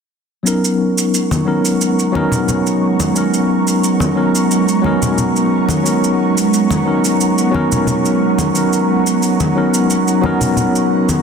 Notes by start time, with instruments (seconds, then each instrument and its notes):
0.43 tine electric piano F#3 B3 C#4 D#4, ambient pad G#3 B3 F#5 A#5 C#6, shaker
0.48 tine electric piano A#4
0.65 shaker
0.98 shaker
1.14 shaker
1.31 high conga, shaker
1.45 tine electric piano F#3 B3 C#4 D#4 A#4
1.65 shaker
1.81 shaker
1.99 shaker
2.12 tine electric piano F#3 B3 C#4 D#4, high conga
2.16 tine electric piano A#4
2.32 low conga, shaker
2.48 low conga, shaker
2.67 shaker
3.00 high conga, shaker
3.13 tine electric piano F#3 B3 C#4 D#4, shaker
3.18 tine electric piano A#4
3.34 shaker
3.68 shaker
3.84 shaker
4.00 high conga, shaker
4.15 tine electric piano F#3 B3 C#4 D#4 A#4
4.35 shaker
4.51 shaker
4.69 shaker
4.81 tine electric piano F#3 B3 C#4 D#4, high conga
4.86 tine electric piano A#4
5.02 low conga, shaker
5.18 low conga, shaker
5.36 shaker
5.69 high conga, shaker
5.83 tine electric piano F#3 B3 C#4 D#4, shaker
5.88 tine electric piano A#4
6.04 shaker
6.38 shaker
6.54 shaker
6.71 high conga, shaker
6.85 tine electric piano F#3 B3 C#4 D#4 A#4
7.05 shaker
7.21 shaker
7.38 shaker
7.51 tine electric piano F#3 B3 C#4 D#4, high conga
7.56 tine electric piano A#4
7.72 low conga, shaker
7.87 low conga, shaker
8.06 shaker
8.38 high conga, shaker
8.53 tine electric piano F#3 B3 C#4 D#4, shaker
8.58 tine electric piano A#4
8.73 shaker
9.07 shaker
9.23 shaker
9.40 high conga, shaker
9.55 tine electric piano F#3 B3 C#4 D#4 A#4
9.74 shaker
9.90 shaker
10.08 shaker
10.21 tine electric piano F#3 B3 C#4 D#4, high conga
10.26 tine electric piano A#4
10.41 low conga, shaker
10.57 low conga, shaker
10.76 shaker
11.09 high conga, shaker